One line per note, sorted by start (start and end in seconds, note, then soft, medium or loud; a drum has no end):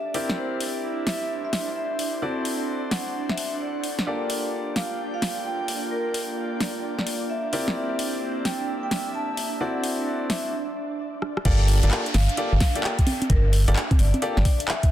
0.00 0.12 A#3 medium
0.00 4.05 D4 medium
0.00 0.12 F4 medium
0.00 0.12 G4 medium
0.00 1.00 G4 medium
0.00 0.13 A4 medium
0.00 0.12 D5 medium
0.00 4.05 D5 medium
0.00 0.25 E5 medium
0.00 0.15 F5 medium
0.14 2.20 C4 medium
0.14 2.88 E4 medium
0.14 2.20 E4 medium
0.14 2.20 G4 medium
0.14 2.20 A#4 medium
0.14 2.20 D5 medium
0.14 open hi-hat medium
0.29 snare medium
0.37 0.61 C5 medium
0.61 5.45 C5 medium
0.61 open hi-hat medium
1.07 1.30 E5 medium
1.07 snare medium
1.07 open hi-hat medium
1.45 1.68 E5 medium
1.53 snare medium
1.53 open hi-hat loud
1.76 2.09 E5 medium
1.99 open hi-hat medium
2.22 4.05 C4 medium
2.22 4.93 D4 medium
2.22 4.05 E4 medium
2.22 4.05 F#4 medium
2.22 4.05 A4 medium
2.22 2.45 D5 medium
2.22 4.05 D5 medium
2.45 open hi-hat loud
2.91 3.15 F#5 medium
2.91 snare medium
2.91 open hi-hat medium
3.08 4.07 F#5 medium
3.29 3.53 E5 medium
3.29 snare soft
3.38 open hi-hat medium
3.60 3.94 D5 medium
3.84 open hi-hat medium
3.99 snare medium
4.06 7.51 A#3 medium
4.06 11.44 D4 medium
4.06 7.53 F4 medium
4.06 7.51 F4 medium
4.06 7.51 G4 medium
4.06 7.51 A4 medium
4.06 11.46 D5 medium
4.06 7.51 D5 medium
4.06 4.30 D5 medium
4.30 open hi-hat loud
4.35 8.39 G5 medium
4.76 4.99 F5 medium
4.76 snare medium
4.76 open hi-hat medium
4.87 9.61 A#3 medium
5.14 5.37 F5 medium
5.22 snare medium
5.22 open hi-hat loud
5.45 5.78 G5 medium
5.68 open hi-hat medium
5.91 6.15 A#4 medium
6.14 open hi-hat loud
6.61 6.84 D5 medium
6.61 snare medium
6.61 open hi-hat medium
6.99 7.22 D5 medium
6.99 snare soft
7.07 open hi-hat medium
7.30 7.63 E5 medium
7.53 9.59 C4 medium
7.53 10.26 C4 medium
7.53 9.59 E4 medium
7.53 9.59 G4 medium
7.53 9.59 A#4 medium
7.53 9.59 D5 medium
7.53 open hi-hat medium
7.68 snare medium
7.76 7.99 E5 medium
7.99 open hi-hat loud
8.19 10.36 E5 medium
8.45 8.68 G5 medium
8.45 snare medium
8.45 open hi-hat medium
8.83 9.06 G5 medium
8.91 snare medium
8.91 open hi-hat loud
9.14 9.48 A5 medium
9.37 open hi-hat medium
9.61 10.53 C4 medium
9.61 10.53 D4 medium
9.61 10.53 E4 medium
9.61 10.53 F#4 medium
9.61 10.53 A4 medium
9.61 10.53 D5 medium
9.61 9.84 F#5 medium
9.75 10.53 C5 medium
9.84 open hi-hat loud
10.30 10.53 E5 medium
10.30 snare medium
10.30 open hi-hat medium
10.47 10.53 F#5 medium
11.22 cross-stick medium
11.37 cross-stick medium
11.45 11.81 G1 loud
11.45 11.77 A#3 loud
11.45 14.91 D4 medium
11.45 11.77 F4 medium
11.45 11.77 G4 medium
11.45 11.77 A4 medium
11.45 11.68 D5 loud
11.45 11.77 D5 loud
11.45 14.91 E5 medium
11.45 kick loud
11.45 closed hi-hat medium
11.45 crash loud
11.45 downlifter medium
11.68 open hi-hat loud
11.83 11.91 G1 medium
11.83 12.01 A#3 medium
11.83 12.01 F4 medium
11.83 12.01 G4 medium
11.83 12.01 A4 medium
11.83 12.01 D5 medium
11.83 closed hi-hat medium
11.91 clap loud
12.06 closed hi-hat soft
12.14 12.28 G1 medium
12.14 12.38 F5 medium
12.14 snare medium
12.14 open hi-hat loud
12.29 closed hi-hat soft
12.37 12.53 A#3 medium
12.37 12.53 F4 medium
12.37 12.53 G4 medium
12.37 12.53 A4 medium
12.37 12.53 D5 medium
12.37 closed hi-hat medium
12.53 12.60 G1 loud
12.53 12.76 F5 medium
12.60 kick loud
12.60 snare medium
12.60 open hi-hat loud
12.76 12.94 A#3 medium
12.76 12.94 F4 medium
12.76 12.94 G4 medium
12.76 12.94 A4 medium
12.76 12.94 D5 medium
12.76 closed hi-hat medium
12.84 13.17 G5 medium
12.84 clap loud
12.99 kick medium
12.99 closed hi-hat medium
13.07 open hi-hat loud
13.07 high conga medium
13.22 closed hi-hat medium
13.22 high conga medium
13.30 13.65 G1 loud
13.30 13.53 A#4 loud
13.30 kick loud
13.30 closed hi-hat medium
13.53 open hi-hat loud
13.68 13.75 G1 medium
13.68 13.76 A#3 medium
13.68 13.76 F4 medium
13.68 13.76 G4 medium
13.68 13.77 A4 medium
13.68 13.76 D5 loud
13.68 closed hi-hat medium
13.76 clap loud
13.91 kick loud
13.91 closed hi-hat soft
13.91 high conga medium
13.99 14.12 G1 medium
13.99 14.22 D5 medium
13.99 open hi-hat medium
14.14 closed hi-hat soft
14.14 high conga medium
14.22 14.37 A#3 medium
14.22 14.37 F4 medium
14.22 14.37 G4 medium
14.22 14.37 A4 medium
14.22 14.37 D5 loud
14.22 closed hi-hat medium
14.37 14.44 G1 medium
14.37 14.60 D5 medium
14.37 snare medium
14.45 kick loud
14.45 open hi-hat loud
14.60 closed hi-hat medium
14.68 14.91 E5 medium
14.68 clap loud
14.83 kick medium
14.83 closed hi-hat medium